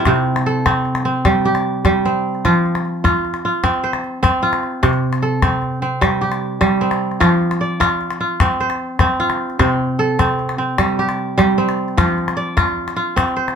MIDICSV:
0, 0, Header, 1, 3, 480
1, 0, Start_track
1, 0, Key_signature, 0, "major"
1, 0, Tempo, 397351
1, 76, Time_signature, 12, 3, 24, 8
1, 16372, End_track
2, 0, Start_track
2, 0, Title_t, "Kora"
2, 0, Program_c, 0, 46
2, 0, Note_on_c, 0, 64, 70
2, 0, Note_on_c, 0, 65, 68
2, 0, Note_on_c, 0, 67, 75
2, 0, Note_on_c, 0, 69, 68
2, 0, Note_on_c, 0, 72, 65
2, 77, Note_on_c, 0, 60, 70
2, 78, Note_on_c, 0, 48, 82
2, 432, Note_off_c, 0, 72, 0
2, 555, Note_off_c, 0, 69, 0
2, 560, Note_on_c, 0, 69, 66
2, 789, Note_off_c, 0, 60, 0
2, 794, Note_on_c, 0, 60, 76
2, 1264, Note_off_c, 0, 60, 0
2, 1269, Note_on_c, 0, 60, 58
2, 1418, Note_off_c, 0, 67, 0
2, 1512, Note_on_c, 0, 55, 80
2, 1665, Note_off_c, 0, 65, 0
2, 1757, Note_on_c, 0, 67, 64
2, 1855, Note_off_c, 0, 64, 0
2, 2151, Note_off_c, 0, 69, 0
2, 2223, Note_off_c, 0, 55, 0
2, 2237, Note_on_c, 0, 55, 80
2, 2476, Note_off_c, 0, 60, 0
2, 2481, Note_on_c, 0, 60, 63
2, 2905, Note_off_c, 0, 48, 0
2, 2960, Note_on_c, 0, 65, 65
2, 2962, Note_on_c, 0, 53, 73
2, 3019, Note_off_c, 0, 55, 0
2, 3463, Note_off_c, 0, 67, 0
2, 3667, Note_off_c, 0, 65, 0
2, 3672, Note_on_c, 0, 65, 75
2, 4162, Note_off_c, 0, 65, 0
2, 4167, Note_on_c, 0, 65, 63
2, 4387, Note_off_c, 0, 60, 0
2, 4392, Note_on_c, 0, 60, 77
2, 4633, Note_on_c, 0, 72, 62
2, 5100, Note_off_c, 0, 60, 0
2, 5105, Note_on_c, 0, 60, 90
2, 5341, Note_off_c, 0, 65, 0
2, 5346, Note_on_c, 0, 65, 66
2, 5788, Note_off_c, 0, 53, 0
2, 5831, Note_on_c, 0, 48, 81
2, 6068, Note_off_c, 0, 72, 0
2, 6311, Note_on_c, 0, 69, 65
2, 6548, Note_off_c, 0, 60, 0
2, 6553, Note_on_c, 0, 60, 74
2, 7026, Note_off_c, 0, 60, 0
2, 7031, Note_on_c, 0, 60, 60
2, 7175, Note_off_c, 0, 65, 0
2, 7264, Note_on_c, 0, 55, 74
2, 7506, Note_on_c, 0, 67, 60
2, 7903, Note_off_c, 0, 69, 0
2, 7967, Note_off_c, 0, 55, 0
2, 7981, Note_on_c, 0, 55, 88
2, 8222, Note_off_c, 0, 60, 0
2, 8227, Note_on_c, 0, 60, 60
2, 8658, Note_off_c, 0, 48, 0
2, 8701, Note_on_c, 0, 65, 69
2, 8704, Note_on_c, 0, 53, 79
2, 8775, Note_off_c, 0, 55, 0
2, 9189, Note_on_c, 0, 74, 60
2, 9212, Note_off_c, 0, 67, 0
2, 9418, Note_off_c, 0, 65, 0
2, 9423, Note_on_c, 0, 65, 78
2, 9907, Note_off_c, 0, 65, 0
2, 9911, Note_on_c, 0, 65, 59
2, 10153, Note_off_c, 0, 60, 0
2, 10158, Note_on_c, 0, 60, 72
2, 10394, Note_on_c, 0, 72, 64
2, 10528, Note_off_c, 0, 74, 0
2, 10867, Note_off_c, 0, 60, 0
2, 10872, Note_on_c, 0, 60, 83
2, 11106, Note_off_c, 0, 65, 0
2, 11111, Note_on_c, 0, 65, 71
2, 11531, Note_off_c, 0, 53, 0
2, 11586, Note_off_c, 0, 60, 0
2, 11589, Note_on_c, 0, 48, 85
2, 11591, Note_on_c, 0, 60, 66
2, 11829, Note_off_c, 0, 72, 0
2, 12068, Note_on_c, 0, 69, 64
2, 12304, Note_off_c, 0, 60, 0
2, 12309, Note_on_c, 0, 60, 79
2, 12780, Note_off_c, 0, 60, 0
2, 12785, Note_on_c, 0, 60, 60
2, 12939, Note_off_c, 0, 65, 0
2, 13025, Note_on_c, 0, 55, 71
2, 13276, Note_on_c, 0, 67, 66
2, 13659, Note_off_c, 0, 69, 0
2, 13727, Note_off_c, 0, 55, 0
2, 13742, Note_on_c, 0, 55, 83
2, 13981, Note_off_c, 0, 60, 0
2, 13986, Note_on_c, 0, 60, 62
2, 14415, Note_off_c, 0, 48, 0
2, 14465, Note_on_c, 0, 53, 80
2, 14469, Note_on_c, 0, 65, 71
2, 14530, Note_off_c, 0, 55, 0
2, 14939, Note_on_c, 0, 74, 69
2, 14982, Note_off_c, 0, 67, 0
2, 15177, Note_off_c, 0, 65, 0
2, 15182, Note_on_c, 0, 65, 83
2, 15655, Note_off_c, 0, 65, 0
2, 15660, Note_on_c, 0, 65, 62
2, 15896, Note_off_c, 0, 60, 0
2, 15901, Note_on_c, 0, 60, 69
2, 16145, Note_on_c, 0, 72, 61
2, 16277, Note_off_c, 0, 74, 0
2, 16372, Note_off_c, 0, 53, 0
2, 16372, Note_off_c, 0, 60, 0
2, 16372, Note_off_c, 0, 65, 0
2, 16372, Note_off_c, 0, 72, 0
2, 16372, End_track
3, 0, Start_track
3, 0, Title_t, "Calabash"
3, 66, Note_on_c, 9, 36, 69
3, 66, Note_on_c, 9, 38, 64
3, 187, Note_off_c, 9, 36, 0
3, 187, Note_off_c, 9, 38, 0
3, 194, Note_on_c, 9, 38, 21
3, 315, Note_off_c, 9, 38, 0
3, 436, Note_on_c, 9, 38, 53
3, 556, Note_off_c, 9, 38, 0
3, 795, Note_on_c, 9, 36, 63
3, 795, Note_on_c, 9, 38, 59
3, 916, Note_off_c, 9, 36, 0
3, 916, Note_off_c, 9, 38, 0
3, 1031, Note_on_c, 9, 38, 17
3, 1148, Note_off_c, 9, 38, 0
3, 1148, Note_on_c, 9, 38, 48
3, 1269, Note_off_c, 9, 38, 0
3, 1510, Note_on_c, 9, 36, 59
3, 1510, Note_on_c, 9, 38, 58
3, 1631, Note_off_c, 9, 36, 0
3, 1631, Note_off_c, 9, 38, 0
3, 1748, Note_on_c, 9, 38, 19
3, 1869, Note_off_c, 9, 38, 0
3, 1871, Note_on_c, 9, 38, 45
3, 1992, Note_off_c, 9, 38, 0
3, 2232, Note_on_c, 9, 36, 56
3, 2232, Note_on_c, 9, 38, 49
3, 2352, Note_off_c, 9, 36, 0
3, 2352, Note_off_c, 9, 38, 0
3, 2836, Note_on_c, 9, 38, 15
3, 2957, Note_off_c, 9, 38, 0
3, 2957, Note_on_c, 9, 36, 52
3, 2957, Note_on_c, 9, 38, 48
3, 3078, Note_off_c, 9, 36, 0
3, 3078, Note_off_c, 9, 38, 0
3, 3206, Note_on_c, 9, 38, 15
3, 3324, Note_off_c, 9, 38, 0
3, 3324, Note_on_c, 9, 38, 42
3, 3445, Note_off_c, 9, 38, 0
3, 3445, Note_on_c, 9, 38, 16
3, 3566, Note_off_c, 9, 38, 0
3, 3683, Note_on_c, 9, 36, 53
3, 3683, Note_on_c, 9, 38, 59
3, 3804, Note_off_c, 9, 36, 0
3, 3804, Note_off_c, 9, 38, 0
3, 3923, Note_on_c, 9, 38, 16
3, 4033, Note_off_c, 9, 38, 0
3, 4033, Note_on_c, 9, 38, 44
3, 4153, Note_off_c, 9, 38, 0
3, 4392, Note_on_c, 9, 36, 60
3, 4392, Note_on_c, 9, 38, 56
3, 4513, Note_off_c, 9, 36, 0
3, 4513, Note_off_c, 9, 38, 0
3, 4519, Note_on_c, 9, 38, 19
3, 4640, Note_off_c, 9, 38, 0
3, 4752, Note_on_c, 9, 38, 47
3, 4872, Note_off_c, 9, 38, 0
3, 4883, Note_on_c, 9, 38, 18
3, 5004, Note_off_c, 9, 38, 0
3, 5120, Note_on_c, 9, 36, 60
3, 5120, Note_on_c, 9, 38, 55
3, 5241, Note_off_c, 9, 36, 0
3, 5241, Note_off_c, 9, 38, 0
3, 5363, Note_on_c, 9, 38, 20
3, 5471, Note_off_c, 9, 38, 0
3, 5471, Note_on_c, 9, 38, 47
3, 5591, Note_off_c, 9, 38, 0
3, 5596, Note_on_c, 9, 38, 19
3, 5717, Note_off_c, 9, 38, 0
3, 5837, Note_on_c, 9, 36, 68
3, 5837, Note_on_c, 9, 38, 67
3, 5957, Note_off_c, 9, 36, 0
3, 5957, Note_off_c, 9, 38, 0
3, 5957, Note_on_c, 9, 38, 22
3, 6078, Note_off_c, 9, 38, 0
3, 6192, Note_on_c, 9, 38, 50
3, 6313, Note_off_c, 9, 38, 0
3, 6553, Note_on_c, 9, 36, 69
3, 6553, Note_on_c, 9, 38, 62
3, 6673, Note_off_c, 9, 36, 0
3, 6673, Note_off_c, 9, 38, 0
3, 6789, Note_on_c, 9, 38, 18
3, 6909, Note_off_c, 9, 38, 0
3, 7275, Note_on_c, 9, 36, 69
3, 7275, Note_on_c, 9, 38, 61
3, 7395, Note_off_c, 9, 36, 0
3, 7395, Note_off_c, 9, 38, 0
3, 7630, Note_on_c, 9, 38, 52
3, 7751, Note_off_c, 9, 38, 0
3, 7989, Note_on_c, 9, 36, 59
3, 7989, Note_on_c, 9, 38, 62
3, 8110, Note_off_c, 9, 36, 0
3, 8110, Note_off_c, 9, 38, 0
3, 8349, Note_on_c, 9, 38, 52
3, 8470, Note_off_c, 9, 38, 0
3, 8595, Note_on_c, 9, 38, 20
3, 8712, Note_off_c, 9, 38, 0
3, 8712, Note_on_c, 9, 36, 68
3, 8712, Note_on_c, 9, 38, 72
3, 8833, Note_off_c, 9, 36, 0
3, 8833, Note_off_c, 9, 38, 0
3, 8833, Note_on_c, 9, 38, 21
3, 8953, Note_off_c, 9, 38, 0
3, 9074, Note_on_c, 9, 38, 51
3, 9194, Note_off_c, 9, 38, 0
3, 9434, Note_on_c, 9, 36, 61
3, 9434, Note_on_c, 9, 38, 65
3, 9555, Note_off_c, 9, 36, 0
3, 9555, Note_off_c, 9, 38, 0
3, 9673, Note_on_c, 9, 38, 20
3, 9791, Note_off_c, 9, 38, 0
3, 9791, Note_on_c, 9, 38, 50
3, 9912, Note_off_c, 9, 38, 0
3, 10148, Note_on_c, 9, 36, 68
3, 10148, Note_on_c, 9, 38, 70
3, 10269, Note_off_c, 9, 36, 0
3, 10269, Note_off_c, 9, 38, 0
3, 10392, Note_on_c, 9, 38, 20
3, 10508, Note_off_c, 9, 38, 0
3, 10508, Note_on_c, 9, 38, 49
3, 10628, Note_off_c, 9, 38, 0
3, 10863, Note_on_c, 9, 36, 66
3, 10863, Note_on_c, 9, 38, 62
3, 10984, Note_off_c, 9, 36, 0
3, 10984, Note_off_c, 9, 38, 0
3, 11231, Note_on_c, 9, 38, 51
3, 11352, Note_off_c, 9, 38, 0
3, 11473, Note_on_c, 9, 38, 19
3, 11592, Note_off_c, 9, 38, 0
3, 11592, Note_on_c, 9, 36, 59
3, 11592, Note_on_c, 9, 38, 64
3, 11712, Note_off_c, 9, 38, 0
3, 11712, Note_on_c, 9, 38, 20
3, 11713, Note_off_c, 9, 36, 0
3, 11832, Note_off_c, 9, 38, 0
3, 12314, Note_on_c, 9, 36, 61
3, 12314, Note_on_c, 9, 38, 61
3, 12435, Note_off_c, 9, 36, 0
3, 12435, Note_off_c, 9, 38, 0
3, 12554, Note_on_c, 9, 38, 19
3, 12674, Note_off_c, 9, 38, 0
3, 12674, Note_on_c, 9, 38, 49
3, 12794, Note_off_c, 9, 38, 0
3, 13027, Note_on_c, 9, 36, 68
3, 13027, Note_on_c, 9, 38, 67
3, 13148, Note_off_c, 9, 36, 0
3, 13148, Note_off_c, 9, 38, 0
3, 13277, Note_on_c, 9, 38, 22
3, 13394, Note_off_c, 9, 38, 0
3, 13394, Note_on_c, 9, 38, 51
3, 13514, Note_off_c, 9, 38, 0
3, 13758, Note_on_c, 9, 36, 57
3, 13758, Note_on_c, 9, 38, 59
3, 13879, Note_off_c, 9, 36, 0
3, 13879, Note_off_c, 9, 38, 0
3, 14117, Note_on_c, 9, 38, 48
3, 14238, Note_off_c, 9, 38, 0
3, 14355, Note_on_c, 9, 38, 18
3, 14474, Note_off_c, 9, 38, 0
3, 14474, Note_on_c, 9, 36, 70
3, 14474, Note_on_c, 9, 38, 65
3, 14595, Note_off_c, 9, 36, 0
3, 14595, Note_off_c, 9, 38, 0
3, 14715, Note_on_c, 9, 38, 19
3, 14834, Note_off_c, 9, 38, 0
3, 14834, Note_on_c, 9, 38, 52
3, 14953, Note_off_c, 9, 38, 0
3, 14953, Note_on_c, 9, 38, 19
3, 15074, Note_off_c, 9, 38, 0
3, 15191, Note_on_c, 9, 36, 67
3, 15191, Note_on_c, 9, 38, 67
3, 15312, Note_off_c, 9, 36, 0
3, 15312, Note_off_c, 9, 38, 0
3, 15313, Note_on_c, 9, 38, 20
3, 15433, Note_off_c, 9, 38, 0
3, 15555, Note_on_c, 9, 38, 49
3, 15676, Note_off_c, 9, 38, 0
3, 15915, Note_on_c, 9, 36, 60
3, 15915, Note_on_c, 9, 38, 67
3, 16036, Note_off_c, 9, 36, 0
3, 16036, Note_off_c, 9, 38, 0
3, 16047, Note_on_c, 9, 38, 20
3, 16168, Note_off_c, 9, 38, 0
3, 16285, Note_on_c, 9, 38, 45
3, 16372, Note_off_c, 9, 38, 0
3, 16372, End_track
0, 0, End_of_file